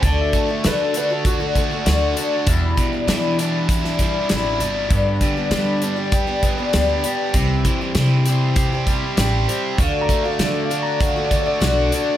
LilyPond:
<<
  \new Staff \with { instrumentName = "Upright piano" } { \time 4/4 \key d \mixolydian \tempo 4 = 98 <aes'' a''>16 e''16 a''16 e''16 b'16 a'16 b'16 a'16 fis'2 | r1 | r1 | r1 |
\tuplet 3/2 { f''8 bes''8 f''8 d''8 <e'' f''>8 bes''8 f''8 d''8 <cis'' d''>8~ } <cis'' d''>8. r16 | }
  \new Staff \with { instrumentName = "Tonewheel organ" } { \time 4/4 \key d \mixolydian << { r1 | r1 | <b' d'' b''>1 | <c'' e'' c'''>1 |
<d'' fis'' d'''>1 | } \\ { r1 | r1 | g'1~ | g'1 |
a'1 | } >> }
  \new Staff \with { instrumentName = "Overdriven electric guitar" } { \time 4/4 \key d \mixolydian d8 a8 d8 d'8 fis'8 a8 fis'8 d'8 | e,8 b,8 e8 d'8 e'8 g8 e'8 d'8 | g,8 d8 g8 d'8 g'8 b8 g'8 d'8 | c8 e8 e8 c'8 g'8 g8 g'8 c'8 |
d8 a8 d8 d'8 fis'8 a8 fis'8 d'8 | }
  \new Staff \with { instrumentName = "Twelve-string acoustic guitar" } { \time 4/4 \key d \mixolydian <d a d' fis'>8. <a d' fis'>16 <d a d' fis'>8 <d a d' fis'>16 <a d' fis'>8 <a d' fis'>16 <d a d' fis'>16 <a d' fis'>16 <d a d' fis'>8 <d a d' fis'>8 | <e, b, e g d' e'>8. <e g d' e'>16 <e, b, e g d' e'>8 <e g d' e'>8. <e g d' e'>16 <e g d' e'>8 <e, b, e g d' e'>8 <e g d' e'>8 | <g, d g b d' g'>8. <g b d' g'>16 <g, d g b d' g'>8 <g b d' g'>16 <g b d' g'>8 <g b d' g'>16 <g b d' g'>16 <g b d' g'>16 <g, d g b d' g'>8 <g b d' g'>8 | <c e g c' g'>8. <g c' g'>16 <c e g c' g'>8 <e g c' g'>8. <g c' g'>16 <e g c' g'>8 <c e g c' g'>8 <e g c' g'>8 |
<d a d' fis'>8. <a d' fis'>16 <d a d' fis'>8 <d a d' fis'>8. <a d' fis'>16 <d a d' fis'>16 <a d' fis'>16 <d a d' fis'>8 <d a d' fis'>8 | }
  \new Staff \with { instrumentName = "Upright bass" } { \clef bass \time 4/4 \key d \mixolydian d,8 r8 d2 d,8 r8 | e,8 r8 e2 a,,8 g,,8 | g,8 r8 g2 d,8 r8 | c,8 r8 c2 a,,8 r8 |
d,8 r8 d2 b,,8 r8 | }
  \new DrumStaff \with { instrumentName = "Drums" } \drummode { \time 4/4 <hh bd>8 <hh bd>8 <hh sn>8 hh8 <hh bd>8 <hh bd>8 <hh sn>8 hh8 | <hh bd>8 <hh bd>8 <hh sn>8 hh8 <hh bd>16 sn16 <hh bd>8 <hh sn>8 hh8 | <hh bd>8 <hh bd>8 <hh sn>8 hh8 <hh bd>8 <hh bd>8 <hh sn>8 hh8 | <hh bd>8 <hh bd>8 <hh sn>8 hh8 <hh bd>8 <hh bd>8 <hh sn>8 hh8 |
<hh bd>8 <hh bd>8 <hh sn>8 hh8 <hh bd>8 <hh bd>8 <hh sn>8 hh8 | }
>>